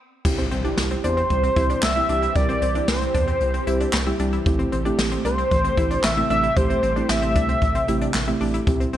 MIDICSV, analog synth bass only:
0, 0, Header, 1, 2, 480
1, 0, Start_track
1, 0, Key_signature, 0, "major"
1, 0, Tempo, 526316
1, 227, Time_signature, 4, 2, 24, 8
1, 8181, End_track
2, 0, Start_track
2, 0, Title_t, "Analog synth bass"
2, 0, Program_c, 0, 38
2, 228, Note_on_c, 0, 36, 114
2, 396, Note_off_c, 0, 36, 0
2, 467, Note_on_c, 0, 36, 97
2, 635, Note_off_c, 0, 36, 0
2, 706, Note_on_c, 0, 36, 101
2, 875, Note_off_c, 0, 36, 0
2, 946, Note_on_c, 0, 40, 99
2, 1115, Note_off_c, 0, 40, 0
2, 1190, Note_on_c, 0, 36, 110
2, 1357, Note_off_c, 0, 36, 0
2, 1426, Note_on_c, 0, 36, 99
2, 1595, Note_off_c, 0, 36, 0
2, 1667, Note_on_c, 0, 36, 98
2, 1835, Note_off_c, 0, 36, 0
2, 1907, Note_on_c, 0, 36, 104
2, 2075, Note_off_c, 0, 36, 0
2, 2149, Note_on_c, 0, 36, 113
2, 2316, Note_off_c, 0, 36, 0
2, 2388, Note_on_c, 0, 36, 97
2, 2556, Note_off_c, 0, 36, 0
2, 2626, Note_on_c, 0, 36, 104
2, 2795, Note_off_c, 0, 36, 0
2, 2869, Note_on_c, 0, 40, 103
2, 3037, Note_off_c, 0, 40, 0
2, 3107, Note_on_c, 0, 36, 102
2, 3275, Note_off_c, 0, 36, 0
2, 3347, Note_on_c, 0, 36, 93
2, 3515, Note_off_c, 0, 36, 0
2, 3585, Note_on_c, 0, 36, 105
2, 3754, Note_off_c, 0, 36, 0
2, 3827, Note_on_c, 0, 36, 112
2, 3995, Note_off_c, 0, 36, 0
2, 4068, Note_on_c, 0, 33, 115
2, 4236, Note_off_c, 0, 33, 0
2, 4308, Note_on_c, 0, 33, 104
2, 4476, Note_off_c, 0, 33, 0
2, 4546, Note_on_c, 0, 33, 97
2, 4715, Note_off_c, 0, 33, 0
2, 4787, Note_on_c, 0, 36, 89
2, 4955, Note_off_c, 0, 36, 0
2, 5029, Note_on_c, 0, 33, 105
2, 5197, Note_off_c, 0, 33, 0
2, 5266, Note_on_c, 0, 33, 98
2, 5434, Note_off_c, 0, 33, 0
2, 5507, Note_on_c, 0, 33, 100
2, 5675, Note_off_c, 0, 33, 0
2, 5746, Note_on_c, 0, 33, 96
2, 5915, Note_off_c, 0, 33, 0
2, 5988, Note_on_c, 0, 33, 121
2, 6156, Note_off_c, 0, 33, 0
2, 6227, Note_on_c, 0, 33, 102
2, 6395, Note_off_c, 0, 33, 0
2, 6467, Note_on_c, 0, 33, 102
2, 6710, Note_on_c, 0, 36, 93
2, 6723, Note_off_c, 0, 33, 0
2, 6877, Note_off_c, 0, 36, 0
2, 6948, Note_on_c, 0, 33, 104
2, 7116, Note_off_c, 0, 33, 0
2, 7188, Note_on_c, 0, 33, 105
2, 7356, Note_off_c, 0, 33, 0
2, 7428, Note_on_c, 0, 33, 105
2, 7596, Note_off_c, 0, 33, 0
2, 7667, Note_on_c, 0, 33, 102
2, 7835, Note_off_c, 0, 33, 0
2, 7907, Note_on_c, 0, 36, 108
2, 8075, Note_off_c, 0, 36, 0
2, 8148, Note_on_c, 0, 36, 97
2, 8181, Note_off_c, 0, 36, 0
2, 8181, End_track
0, 0, End_of_file